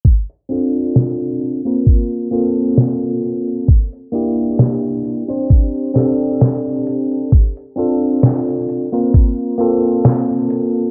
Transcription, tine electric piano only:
X:1
M:4/4
L:1/16
Q:"Swing 16ths" 1/4=66
K:F
V:1 name="Tine electric piano"
z2 [CDFA]4- [CDFA] [B,CFB]3 [B,CFA]6 | z2 [B,DEG]4- [B,DEG] [CDGc]3 [CDGA]6 | z2 [CDFA]4- [CDFA] [B,CFB]3 [B,CFA]6 |]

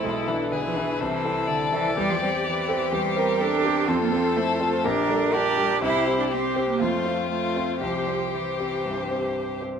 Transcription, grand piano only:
X:1
M:4/4
L:1/8
Q:1/4=124
K:Aphr
V:1 name="Grand piano"
=B,,, [DE=B]2 [DEB] C,, [CEA]2 [CEA] | [K:Cmix] E,, [CGc]2 [CGc] E,, [CGc]2 [CGc] | F,, [CAc]2 [CAc] B,,, [G,Gd]2 [G,Gd] | C,, [CGc]2 [CGc] F,, [CFc]2 [CFc] |
C,, [CGc]2 [CGc] G,, [CGc]2 [CGc] |]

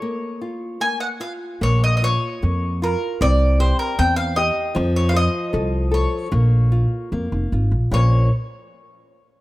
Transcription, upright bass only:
X:1
M:2/4
L:1/16
Q:1/4=77
K:Bbm
V:1 name="Upright bass" clef=bass
z8 | B,,,4 F,,4 | C,,4 =E,,4 | F,,4 C,,4 |
B,,,4 F,, F,,, A,,, B,,, | B,,,2 z6 |]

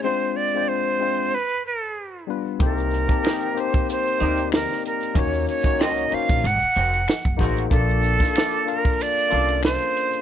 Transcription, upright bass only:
X:1
M:4/4
L:1/16
Q:"Swing 16ths" 1/4=94
K:Cdor
V:1 name="Upright bass" clef=bass
z16 | C,,3 z6 z D,,3 z3 | E,,2 z _D,,3 z B,,, _A,,, z F,,,2 z _G,,, =A,,,2 | B,,,3 z6 z C,,3 z3 |]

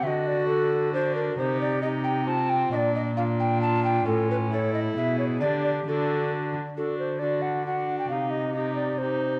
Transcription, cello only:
X:1
M:3/4
L:1/8
Q:1/4=134
K:Dphr
V:1 name="Cello" clef=bass
D,6 | C,6 | B,,6 | A,,4 =B,,2 |
D,2 D,3 z | D,6 | C,6 |]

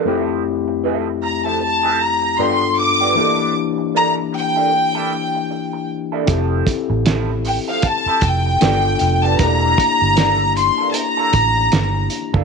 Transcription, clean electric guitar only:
X:1
M:4/4
L:1/16
Q:"Swing 16ths" 1/4=77
K:F
V:1 name="Clean electric guitar"
[F,CEA]2 z2 [F,CEA] z2 [F,CEA] z [F,CEA] z2 [F,=B,DG] z2 [F,B,DG] | [B,DEA]2 z2 [B,DEA] z2 [B,DEA] z [B,DEA] z4 z [B,DEA] | [F,CEA]2 z2 [F,CEA] z2 [F,CEA] z [F,CEA] z2 [F,=B,DG] z2 [F,B,DG] | [E,B,DA]2 z2 [E,B,DA] z2 [E,B,DA] z [E,B,DA] z4 z [E,B,DA] |]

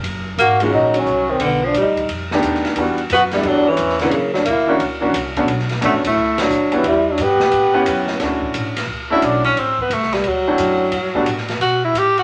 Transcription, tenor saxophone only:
X:1
M:4/4
L:1/8
Q:"Swing" 1/4=176
K:D
V:1 name="Tenor saxophone" clef=bass
z2 ^A, ^G, F, F,2 ^D, | D, =F, G,2 z4 | z2 B, G, F, E,2 D, | C, F, ^A,2 z4 |
z2 A, A,2 F,2 E, | G, F, B,4- B, z | z4 z E D C | =C B, A, G, F,4- |
F,2 z2 F E G F |]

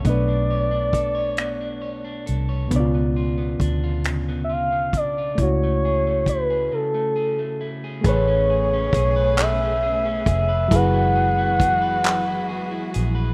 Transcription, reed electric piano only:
X:1
M:6/8
L:1/8
Q:3/8=45
K:A
V:1 name="Reed electric piano"
[B,,A,DB]6 | [B,,B,D^Ed]6 | [A,EF]6 | [A,GBc]6 |
[F,EGB]6 |]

